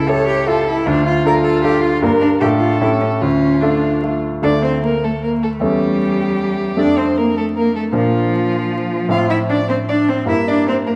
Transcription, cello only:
0, 0, Header, 1, 2, 480
1, 0, Start_track
1, 0, Key_signature, -1, "minor"
1, 0, Tempo, 388098
1, 1069, Time_signature, 3, 2, 24, 8
1, 2985, Tempo, 401875
1, 6345, Tempo, 389105
1, 13414, End_track
2, 0, Start_track
2, 0, Title_t, "Cello"
2, 0, Program_c, 0, 42
2, 104, Note_on_c, 0, 69, 98
2, 340, Note_off_c, 0, 69, 0
2, 348, Note_on_c, 0, 67, 84
2, 594, Note_on_c, 0, 65, 87
2, 613, Note_off_c, 0, 67, 0
2, 832, Note_off_c, 0, 65, 0
2, 839, Note_on_c, 0, 64, 87
2, 1071, Note_on_c, 0, 62, 100
2, 1089, Note_off_c, 0, 64, 0
2, 1306, Note_off_c, 0, 62, 0
2, 1313, Note_on_c, 0, 65, 89
2, 1547, Note_off_c, 0, 65, 0
2, 1559, Note_on_c, 0, 70, 104
2, 1653, Note_off_c, 0, 70, 0
2, 1790, Note_on_c, 0, 69, 84
2, 2024, Note_off_c, 0, 69, 0
2, 2037, Note_on_c, 0, 67, 99
2, 2262, Note_off_c, 0, 67, 0
2, 2269, Note_on_c, 0, 65, 84
2, 2501, Note_off_c, 0, 65, 0
2, 2511, Note_on_c, 0, 58, 92
2, 2606, Note_off_c, 0, 58, 0
2, 2735, Note_on_c, 0, 62, 88
2, 2833, Note_off_c, 0, 62, 0
2, 2973, Note_on_c, 0, 67, 91
2, 3069, Note_off_c, 0, 67, 0
2, 3207, Note_on_c, 0, 65, 69
2, 3448, Note_off_c, 0, 65, 0
2, 3457, Note_on_c, 0, 64, 78
2, 3552, Note_off_c, 0, 64, 0
2, 3686, Note_on_c, 0, 61, 73
2, 3782, Note_off_c, 0, 61, 0
2, 3925, Note_on_c, 0, 61, 86
2, 4414, Note_on_c, 0, 62, 68
2, 4432, Note_off_c, 0, 61, 0
2, 4906, Note_off_c, 0, 62, 0
2, 5395, Note_on_c, 0, 62, 86
2, 5491, Note_off_c, 0, 62, 0
2, 5630, Note_on_c, 0, 60, 75
2, 5867, Note_off_c, 0, 60, 0
2, 5878, Note_on_c, 0, 58, 78
2, 5972, Note_off_c, 0, 58, 0
2, 6119, Note_on_c, 0, 57, 71
2, 6211, Note_off_c, 0, 57, 0
2, 6353, Note_on_c, 0, 58, 76
2, 6589, Note_on_c, 0, 57, 74
2, 6607, Note_off_c, 0, 58, 0
2, 6827, Note_on_c, 0, 55, 78
2, 6845, Note_off_c, 0, 57, 0
2, 8262, Note_off_c, 0, 55, 0
2, 8269, Note_on_c, 0, 62, 82
2, 8491, Note_off_c, 0, 62, 0
2, 8498, Note_on_c, 0, 60, 75
2, 8596, Note_off_c, 0, 60, 0
2, 8755, Note_on_c, 0, 58, 80
2, 8978, Note_off_c, 0, 58, 0
2, 8986, Note_on_c, 0, 57, 68
2, 9218, Note_off_c, 0, 57, 0
2, 9239, Note_on_c, 0, 58, 79
2, 9457, Note_off_c, 0, 58, 0
2, 9465, Note_on_c, 0, 57, 74
2, 9683, Note_off_c, 0, 57, 0
2, 9691, Note_on_c, 0, 53, 86
2, 11124, Note_on_c, 0, 65, 97
2, 11143, Note_off_c, 0, 53, 0
2, 11361, Note_off_c, 0, 65, 0
2, 11368, Note_on_c, 0, 64, 87
2, 11464, Note_off_c, 0, 64, 0
2, 11609, Note_on_c, 0, 62, 83
2, 11705, Note_off_c, 0, 62, 0
2, 11853, Note_on_c, 0, 60, 80
2, 11949, Note_off_c, 0, 60, 0
2, 12100, Note_on_c, 0, 62, 91
2, 12338, Note_on_c, 0, 60, 83
2, 12357, Note_off_c, 0, 62, 0
2, 12571, Note_off_c, 0, 60, 0
2, 12579, Note_on_c, 0, 64, 92
2, 12676, Note_off_c, 0, 64, 0
2, 12826, Note_on_c, 0, 62, 88
2, 13060, Note_off_c, 0, 62, 0
2, 13069, Note_on_c, 0, 60, 83
2, 13164, Note_off_c, 0, 60, 0
2, 13306, Note_on_c, 0, 58, 77
2, 13401, Note_off_c, 0, 58, 0
2, 13414, End_track
0, 0, End_of_file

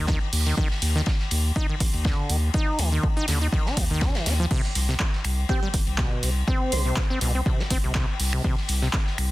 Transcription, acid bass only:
0, 0, Header, 1, 2, 480
1, 0, Start_track
1, 0, Tempo, 491803
1, 560, Time_signature, 4, 2, 24, 8
1, 9092, End_track
2, 0, Start_track
2, 0, Title_t, "Acid bass"
2, 0, Program_c, 0, 38
2, 80, Note_on_c, 0, 51, 102
2, 188, Note_off_c, 0, 51, 0
2, 451, Note_on_c, 0, 51, 76
2, 542, Note_off_c, 0, 51, 0
2, 560, Note_on_c, 0, 51, 98
2, 667, Note_off_c, 0, 51, 0
2, 930, Note_on_c, 0, 51, 99
2, 991, Note_off_c, 0, 51, 0
2, 1041, Note_on_c, 0, 51, 84
2, 1084, Note_off_c, 0, 51, 0
2, 1521, Note_on_c, 0, 63, 99
2, 1628, Note_off_c, 0, 63, 0
2, 1653, Note_on_c, 0, 51, 78
2, 1712, Note_off_c, 0, 51, 0
2, 2003, Note_on_c, 0, 50, 83
2, 2242, Note_on_c, 0, 51, 76
2, 2257, Note_off_c, 0, 50, 0
2, 2313, Note_off_c, 0, 51, 0
2, 2482, Note_on_c, 0, 63, 98
2, 2722, Note_on_c, 0, 51, 100
2, 2737, Note_off_c, 0, 63, 0
2, 2829, Note_off_c, 0, 51, 0
2, 2853, Note_on_c, 0, 51, 74
2, 2961, Note_on_c, 0, 50, 83
2, 2976, Note_off_c, 0, 51, 0
2, 3004, Note_off_c, 0, 50, 0
2, 3090, Note_on_c, 0, 63, 96
2, 3181, Note_off_c, 0, 63, 0
2, 3203, Note_on_c, 0, 50, 76
2, 3309, Note_off_c, 0, 50, 0
2, 3331, Note_on_c, 0, 63, 75
2, 3391, Note_off_c, 0, 63, 0
2, 3442, Note_on_c, 0, 51, 83
2, 3570, Note_on_c, 0, 63, 100
2, 3585, Note_off_c, 0, 51, 0
2, 3681, Note_on_c, 0, 51, 74
2, 3695, Note_off_c, 0, 63, 0
2, 3752, Note_off_c, 0, 51, 0
2, 3812, Note_on_c, 0, 51, 100
2, 3920, Note_on_c, 0, 62, 83
2, 3935, Note_off_c, 0, 51, 0
2, 4050, Note_on_c, 0, 51, 75
2, 4065, Note_off_c, 0, 62, 0
2, 4160, Note_on_c, 0, 63, 76
2, 4175, Note_off_c, 0, 51, 0
2, 4232, Note_off_c, 0, 63, 0
2, 4291, Note_on_c, 0, 53, 100
2, 4351, Note_off_c, 0, 53, 0
2, 4400, Note_on_c, 0, 48, 99
2, 4508, Note_off_c, 0, 48, 0
2, 4770, Note_on_c, 0, 48, 100
2, 4831, Note_off_c, 0, 48, 0
2, 4880, Note_on_c, 0, 48, 83
2, 4923, Note_off_c, 0, 48, 0
2, 5360, Note_on_c, 0, 60, 99
2, 5467, Note_off_c, 0, 60, 0
2, 5491, Note_on_c, 0, 55, 99
2, 5551, Note_off_c, 0, 55, 0
2, 5840, Note_on_c, 0, 47, 85
2, 6080, Note_on_c, 0, 48, 77
2, 6095, Note_off_c, 0, 47, 0
2, 6152, Note_off_c, 0, 48, 0
2, 6320, Note_on_c, 0, 60, 97
2, 6560, Note_on_c, 0, 48, 99
2, 6575, Note_off_c, 0, 60, 0
2, 6668, Note_off_c, 0, 48, 0
2, 6691, Note_on_c, 0, 48, 75
2, 6802, Note_on_c, 0, 47, 83
2, 6816, Note_off_c, 0, 48, 0
2, 6844, Note_off_c, 0, 47, 0
2, 6933, Note_on_c, 0, 60, 99
2, 7022, Note_off_c, 0, 60, 0
2, 7042, Note_on_c, 0, 47, 73
2, 7148, Note_off_c, 0, 47, 0
2, 7174, Note_on_c, 0, 60, 75
2, 7232, Note_off_c, 0, 60, 0
2, 7283, Note_on_c, 0, 48, 84
2, 7412, Note_on_c, 0, 60, 102
2, 7426, Note_off_c, 0, 48, 0
2, 7447, Note_off_c, 0, 60, 0
2, 7521, Note_on_c, 0, 60, 102
2, 7592, Note_off_c, 0, 60, 0
2, 7652, Note_on_c, 0, 48, 77
2, 7742, Note_off_c, 0, 48, 0
2, 7762, Note_on_c, 0, 48, 103
2, 7869, Note_off_c, 0, 48, 0
2, 8132, Note_on_c, 0, 48, 77
2, 8222, Note_off_c, 0, 48, 0
2, 8242, Note_on_c, 0, 48, 98
2, 8349, Note_off_c, 0, 48, 0
2, 8613, Note_on_c, 0, 48, 101
2, 8672, Note_off_c, 0, 48, 0
2, 8723, Note_on_c, 0, 48, 82
2, 8765, Note_off_c, 0, 48, 0
2, 9092, End_track
0, 0, End_of_file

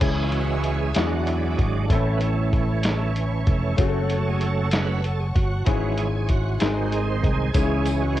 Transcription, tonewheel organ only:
0, 0, Header, 1, 2, 480
1, 0, Start_track
1, 0, Key_signature, 4, "minor"
1, 0, Tempo, 627615
1, 11, Time_signature, 6, 3, 24, 8
1, 6271, End_track
2, 0, Start_track
2, 0, Title_t, "Tonewheel organ"
2, 0, Program_c, 0, 16
2, 4, Note_on_c, 0, 52, 49
2, 7, Note_on_c, 0, 68, 92
2, 9, Note_on_c, 0, 56, 45
2, 15, Note_on_c, 0, 61, 54
2, 194, Note_on_c, 0, 65, 62
2, 201, Note_off_c, 0, 68, 0
2, 249, Note_off_c, 0, 65, 0
2, 250, Note_on_c, 0, 66, 75
2, 494, Note_off_c, 0, 66, 0
2, 503, Note_on_c, 0, 66, 76
2, 609, Note_off_c, 0, 66, 0
2, 623, Note_on_c, 0, 68, 75
2, 698, Note_off_c, 0, 52, 0
2, 700, Note_off_c, 0, 56, 0
2, 703, Note_off_c, 0, 61, 0
2, 734, Note_on_c, 0, 54, 44
2, 736, Note_on_c, 0, 66, 83
2, 739, Note_on_c, 0, 62, 51
2, 740, Note_on_c, 0, 56, 42
2, 741, Note_off_c, 0, 68, 0
2, 978, Note_on_c, 0, 64, 78
2, 981, Note_off_c, 0, 66, 0
2, 1222, Note_off_c, 0, 64, 0
2, 1227, Note_off_c, 0, 62, 0
2, 1236, Note_on_c, 0, 62, 80
2, 1423, Note_off_c, 0, 54, 0
2, 1426, Note_off_c, 0, 56, 0
2, 1466, Note_on_c, 0, 52, 51
2, 1470, Note_on_c, 0, 57, 46
2, 1471, Note_off_c, 0, 62, 0
2, 1475, Note_on_c, 0, 61, 76
2, 1661, Note_on_c, 0, 59, 50
2, 1697, Note_off_c, 0, 57, 0
2, 1704, Note_off_c, 0, 59, 0
2, 1706, Note_on_c, 0, 57, 69
2, 2389, Note_off_c, 0, 57, 0
2, 2650, Note_off_c, 0, 52, 0
2, 2656, Note_off_c, 0, 61, 0
2, 2659, Note_on_c, 0, 52, 51
2, 2665, Note_on_c, 0, 57, 43
2, 2665, Note_on_c, 0, 61, 56
2, 2873, Note_off_c, 0, 52, 0
2, 2876, Note_off_c, 0, 57, 0
2, 2876, Note_off_c, 0, 61, 0
2, 2901, Note_on_c, 0, 54, 54
2, 2902, Note_on_c, 0, 57, 47
2, 2910, Note_on_c, 0, 61, 62
2, 3150, Note_on_c, 0, 69, 67
2, 3265, Note_off_c, 0, 69, 0
2, 3274, Note_on_c, 0, 68, 73
2, 3387, Note_off_c, 0, 68, 0
2, 3389, Note_on_c, 0, 69, 77
2, 3587, Note_off_c, 0, 54, 0
2, 3588, Note_off_c, 0, 57, 0
2, 3592, Note_off_c, 0, 61, 0
2, 3617, Note_on_c, 0, 54, 43
2, 3617, Note_on_c, 0, 57, 37
2, 3622, Note_on_c, 0, 61, 47
2, 3628, Note_off_c, 0, 69, 0
2, 3632, Note_on_c, 0, 71, 77
2, 3831, Note_off_c, 0, 54, 0
2, 3832, Note_off_c, 0, 57, 0
2, 3834, Note_off_c, 0, 61, 0
2, 3862, Note_on_c, 0, 69, 70
2, 3870, Note_off_c, 0, 71, 0
2, 3978, Note_on_c, 0, 68, 69
2, 3981, Note_off_c, 0, 69, 0
2, 4031, Note_off_c, 0, 68, 0
2, 4091, Note_on_c, 0, 66, 84
2, 4319, Note_on_c, 0, 52, 52
2, 4329, Note_on_c, 0, 56, 46
2, 4332, Note_on_c, 0, 61, 60
2, 4587, Note_off_c, 0, 66, 0
2, 4587, Note_on_c, 0, 68, 72
2, 4645, Note_off_c, 0, 52, 0
2, 4650, Note_off_c, 0, 56, 0
2, 4652, Note_off_c, 0, 61, 0
2, 4694, Note_off_c, 0, 68, 0
2, 4703, Note_on_c, 0, 68, 72
2, 4818, Note_on_c, 0, 66, 96
2, 4822, Note_off_c, 0, 68, 0
2, 5054, Note_on_c, 0, 51, 47
2, 5057, Note_on_c, 0, 56, 46
2, 5065, Note_on_c, 0, 60, 53
2, 5301, Note_on_c, 0, 68, 77
2, 5309, Note_off_c, 0, 66, 0
2, 5420, Note_off_c, 0, 68, 0
2, 5425, Note_on_c, 0, 72, 77
2, 5542, Note_off_c, 0, 72, 0
2, 5543, Note_on_c, 0, 68, 83
2, 5742, Note_off_c, 0, 51, 0
2, 5743, Note_off_c, 0, 56, 0
2, 5747, Note_off_c, 0, 60, 0
2, 5771, Note_on_c, 0, 52, 52
2, 5774, Note_off_c, 0, 68, 0
2, 5775, Note_on_c, 0, 56, 46
2, 5780, Note_on_c, 0, 61, 59
2, 5783, Note_on_c, 0, 68, 83
2, 6136, Note_on_c, 0, 66, 77
2, 6147, Note_off_c, 0, 68, 0
2, 6257, Note_off_c, 0, 66, 0
2, 6271, Note_off_c, 0, 52, 0
2, 6271, Note_off_c, 0, 56, 0
2, 6271, Note_off_c, 0, 61, 0
2, 6271, End_track
0, 0, End_of_file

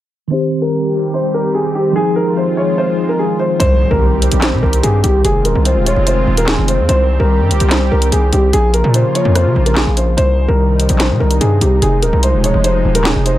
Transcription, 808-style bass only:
0, 0, Header, 1, 2, 480
1, 0, Start_track
1, 0, Tempo, 410959
1, 367, Time_signature, 4, 2, 24, 8
1, 15633, End_track
2, 0, Start_track
2, 0, Title_t, "808-style bass"
2, 0, Program_c, 0, 38
2, 4206, Note_on_c, 0, 36, 114
2, 4552, Note_off_c, 0, 36, 0
2, 4566, Note_on_c, 0, 36, 104
2, 5027, Note_off_c, 0, 36, 0
2, 5046, Note_on_c, 0, 34, 111
2, 5286, Note_on_c, 0, 48, 98
2, 5304, Note_off_c, 0, 34, 0
2, 5400, Note_off_c, 0, 48, 0
2, 5406, Note_on_c, 0, 36, 106
2, 5637, Note_off_c, 0, 36, 0
2, 5646, Note_on_c, 0, 43, 101
2, 5877, Note_off_c, 0, 43, 0
2, 5886, Note_on_c, 0, 36, 101
2, 6117, Note_off_c, 0, 36, 0
2, 6127, Note_on_c, 0, 29, 107
2, 6367, Note_on_c, 0, 27, 105
2, 6384, Note_off_c, 0, 29, 0
2, 6481, Note_off_c, 0, 27, 0
2, 6487, Note_on_c, 0, 36, 108
2, 6727, Note_on_c, 0, 27, 105
2, 6744, Note_off_c, 0, 36, 0
2, 6954, Note_off_c, 0, 27, 0
2, 6967, Note_on_c, 0, 29, 107
2, 7312, Note_off_c, 0, 29, 0
2, 7327, Note_on_c, 0, 27, 104
2, 7672, Note_off_c, 0, 27, 0
2, 7686, Note_on_c, 0, 29, 108
2, 7927, Note_on_c, 0, 41, 101
2, 7944, Note_off_c, 0, 29, 0
2, 8041, Note_off_c, 0, 41, 0
2, 8046, Note_on_c, 0, 36, 112
2, 8392, Note_off_c, 0, 36, 0
2, 8407, Note_on_c, 0, 36, 113
2, 8647, Note_on_c, 0, 43, 105
2, 8664, Note_off_c, 0, 36, 0
2, 8766, Note_on_c, 0, 36, 101
2, 8784, Note_off_c, 0, 43, 0
2, 8880, Note_off_c, 0, 36, 0
2, 8886, Note_on_c, 0, 36, 104
2, 9232, Note_off_c, 0, 36, 0
2, 9246, Note_on_c, 0, 36, 106
2, 9477, Note_off_c, 0, 36, 0
2, 9486, Note_on_c, 0, 36, 104
2, 9717, Note_off_c, 0, 36, 0
2, 9726, Note_on_c, 0, 36, 106
2, 9957, Note_off_c, 0, 36, 0
2, 9966, Note_on_c, 0, 34, 110
2, 10312, Note_off_c, 0, 34, 0
2, 10326, Note_on_c, 0, 46, 106
2, 10557, Note_off_c, 0, 46, 0
2, 10806, Note_on_c, 0, 41, 113
2, 11046, Note_on_c, 0, 49, 98
2, 11064, Note_off_c, 0, 41, 0
2, 11160, Note_off_c, 0, 49, 0
2, 11166, Note_on_c, 0, 34, 102
2, 11512, Note_off_c, 0, 34, 0
2, 11526, Note_on_c, 0, 34, 101
2, 11872, Note_off_c, 0, 34, 0
2, 11886, Note_on_c, 0, 36, 113
2, 12232, Note_off_c, 0, 36, 0
2, 12246, Note_on_c, 0, 36, 109
2, 12707, Note_off_c, 0, 36, 0
2, 12726, Note_on_c, 0, 34, 109
2, 12966, Note_on_c, 0, 48, 97
2, 12984, Note_off_c, 0, 34, 0
2, 13080, Note_off_c, 0, 48, 0
2, 13086, Note_on_c, 0, 36, 105
2, 13317, Note_off_c, 0, 36, 0
2, 13326, Note_on_c, 0, 43, 103
2, 13557, Note_off_c, 0, 43, 0
2, 13566, Note_on_c, 0, 36, 106
2, 13797, Note_off_c, 0, 36, 0
2, 13807, Note_on_c, 0, 29, 110
2, 14046, Note_on_c, 0, 27, 100
2, 14064, Note_off_c, 0, 29, 0
2, 14160, Note_off_c, 0, 27, 0
2, 14166, Note_on_c, 0, 36, 109
2, 14407, Note_on_c, 0, 27, 108
2, 14424, Note_off_c, 0, 36, 0
2, 14635, Note_off_c, 0, 27, 0
2, 14646, Note_on_c, 0, 29, 104
2, 14992, Note_off_c, 0, 29, 0
2, 15006, Note_on_c, 0, 27, 104
2, 15352, Note_off_c, 0, 27, 0
2, 15366, Note_on_c, 0, 29, 108
2, 15624, Note_off_c, 0, 29, 0
2, 15633, End_track
0, 0, End_of_file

